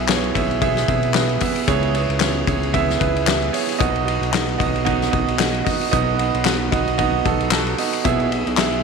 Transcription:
Already playing: analog synth bass B1, grand piano B2 B3 E4 G#4 E5
0.08 grand piano B3 E4 G#4 C#5, snare, clap, ride
0.24 ride
0.34 analog synth bass B1, grand piano B3 E4 G#4 E5, kick, ride
0.51 ride
0.62 grand piano B3 E4 G#4 E5, kick, ride
0.77 snare, ride
0.88 analog synth bass B1, grand piano B3 E4 G#4 E5, kick, ride
1.03 ride
1.14 grand piano B3 E4 G#4 B4, snare, clap, ride
1.29 ride
1.40 grand piano B3 E4 G#4 E5, kick, open hi-hat, ride
1.56 ride
1.68 analog synth bass C#2, grand piano C#3 B3 E4 G#4 C#5, kick, hi-hat pedal, ride
1.83 ride
1.95 grand piano B3 E4 G#4 C#5, ride
2.09 analog synth bass C#2, ride
2.20 grand piano B3 E4 G#4 C#5, snare, clap, ride
2.47 analog synth bass C#2, grand piano B3 E4 G#4 C#5, kick, ride
2.63 ride
2.73 grand piano B3 E4 G#4 E5, kick, ride
2.90 snare
3.00 analog synth bass C#2, grand piano B3 E4 G#4 B4, kick, ride
3.16 ride
3.26 grand piano B3 E4 G#4 E5, snare, clap, ride
3.42 ride
3.53 grand piano B3 E4 G#4 C#5, open hi-hat, ride
3.69 ride
3.79 analog synth bass B1, grand piano B2 B3 D#4 F#4 D#5, kick, hi-hat pedal, ride
3.96 ride
4.05 grand piano B3 D#4 F#4 D#5, ride
4.21 analog synth bass B1, ride
4.32 grand piano B3 D#4 F#4 D#5, snare, clap, ride
4.49 ride
4.58 analog synth bass B1, grand piano B3 D#4 F#4 D#5, kick, ride
4.75 ride
4.85 grand piano B3 D#4 F#4 D#5, kick, ride
5.02 snare, ride
5.11 analog synth bass B1, grand piano B3 D#4 F#4 D#5, kick, ride
5.28 ride
5.38 grand piano B3 D#4 F#4 D#5, snare, clap, ride
5.54 ride
5.64 grand piano B3 D#4 F#4 D#5, kick, open hi-hat, ride
5.81 ride
5.91 analog synth bass B1, grand piano B2 B3 D#4 F#4 D#5, kick, hi-hat pedal, ride
6.17 grand piano B3 D#4 F#4 B4, ride
6.34 analog synth bass B1, ride
6.45 grand piano B3 D#4 F#4 B4, snare, clap, ride
6.71 analog synth bass B1, grand piano B3 D#4 F#4 D#5, kick, ride
6.88 ride
6.98 grand piano B3 D#4 F#4 D#5, kick, ride
7.25 analog synth bass B1, grand piano B3 D#4 F#4 A4, kick, ride
7.40 ride
7.51 grand piano B3 D#4 F#4 A4, snare, clap, ride
7.67 ride
7.78 grand piano B3 D#4 F#4 D#5, open hi-hat, ride
7.93 ride
8.04 analog synth bass B1, grand piano B2 B3 E4 G#4 E5, kick, hi-hat pedal, ride
8.20 ride
8.30 grand piano B3 E4 G#4 E5, ride
8.47 analog synth bass B1, ride
8.57 grand piano B3 E4 G#4 E5, snare, clap, ride
8.72 ride

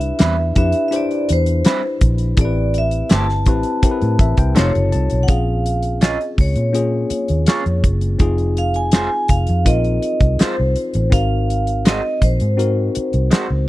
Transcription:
Already playing: fingered electric bass C2, tine electric piano D4 E4 G4 B4, vibraphone E5
0.01 closed hi-hat
0.19 fingered electric bass E2, clean electric guitar G3 C4 E4 B4, snare, closed hi-hat
0.56 fingered electric bass F2, tine electric piano D4 E4 G4 B4, vibraphone E5, kick, closed hi-hat
0.72 closed hi-hat
0.88 tine electric piano D4 E4 G4, vibraphone E5, closed hi-hat
0.93 tine electric piano C5, vibraphone D5
1.11 closed hi-hat
1.29 fingered electric bass E2, vibraphone C5, closed hi-hat
1.46 closed hi-hat
1.65 clean electric guitar G3 C4 E4 B4, snare, closed hi-hat
2.01 fingered electric bass A#1, kick, closed hi-hat
2.18 closed hi-hat
2.37 fingered electric bass A1, tine electric piano C4 E4 G4 A4, kick, closed hi-hat
2.41 tine electric piano B4, vibraphone D5
2.74 closed hi-hat
2.78 vibraphone E5
2.91 closed hi-hat
3.09 fingered electric bass G1, clean electric guitar A3 E4 G4 C5, vibraphone A5, snare, closed hi-hat
3.29 snare
3.46 fingered electric bass A1, tine electric piano C4 E4 G4 B4, kick, closed hi-hat
3.63 closed hi-hat
3.82 tine electric piano C4 E4 G4 A#4, kick, closed hi-hat
3.91 tine electric piano B4
4.01 fingered electric bass A2, closed hi-hat
4.19 fingered electric bass A1, tine electric piano E5, kick, closed hi-hat
4.37 fingered electric bass C2, tine electric piano G5, kick, closed hi-hat
4.55 fingered electric bass F1, tine electric piano C3 D#4 F4 A4 A5, clean electric guitar A3 D#4 F4 C5, vibraphone C#5, snare, closed hi-hat
4.75 fingered electric bass F#1, closed hi-hat
4.92 fingered electric bass C2, tine electric piano A5, closed hi-hat
5.10 fingered electric bass B1, closed hi-hat
5.23 vibraphone F#5
5.27 fingered electric bass A#1, tine electric piano C4 C#4 F4 G#4, vibraphone F5, kick, closed hi-hat
5.66 closed hi-hat
5.83 closed hi-hat
6.01 clean electric guitar C#4 F4 G#4 C#5, vibraphone D#5, snare, closed hi-hat
6.21 closed hi-hat
6.38 fingered electric bass C#2, vibraphone C#5, kick, open hi-hat
6.56 fingered electric bass A#2, closed hi-hat
6.73 tine electric piano A#3 C#4 F4 G#4, closed hi-hat
7.10 muted fingered electric bass stroke, closed hi-hat
7.28 fingered electric bass D#2, closed hi-hat
7.46 clean electric guitar C#4 F4 G#4 C#5, snare, closed hi-hat
7.66 fingered electric bass F2, closed hi-hat
7.84 fingered electric bass F#1, kick, closed hi-hat
8.01 closed hi-hat
8.19 fingered electric bass F1, tine electric piano C4 D#4 F4 G#4, kick, closed hi-hat
8.38 closed hi-hat
8.57 vibraphone F5, closed hi-hat
8.74 vibraphone G#5, closed hi-hat
8.92 clean electric guitar G#3 D#4 F4 C5, vibraphone G#5, snare, closed hi-hat
9.28 fingered electric bass F1, vibraphone F5, kick, closed hi-hat
9.47 fingered electric bass F2, closed hi-hat
9.65 fingered electric bass A#1, tine electric piano C4 D#4 F4 A#4, vibraphone D#5, kick, closed hi-hat
9.84 closed hi-hat
10.02 closed hi-hat
10.20 fingered electric bass C2, kick, closed hi-hat
10.39 clean electric guitar G#3 D#4 F4 C5, vibraphone C5, muted fingered electric bass stroke, snare, closed hi-hat
10.60 fingered electric bass C2
10.76 closed hi-hat
10.94 fingered electric bass A1, closed hi-hat
11.10 fingered electric bass G#1, tine electric piano C4 D#4 F#4 A#4, vibraphone F5, kick, closed hi-hat
11.50 closed hi-hat
11.67 closed hi-hat
11.85 clean electric guitar G#3 D#4 F#4 C5, vibraphone D#5, snare, closed hi-hat
12.22 fingered electric bass A#1, vibraphone C5, kick, closed hi-hat
12.40 fingered electric bass G#2, closed hi-hat
12.57 tine electric piano C4 D#4 F#4 A#4, closed hi-hat
12.95 muted fingered electric bass stroke, closed hi-hat
13.13 fingered electric bass C2, closed hi-hat
13.31 clean electric guitar G#3 D#4 F#4 C5, snare, closed hi-hat
13.50 fingered electric bass C#2

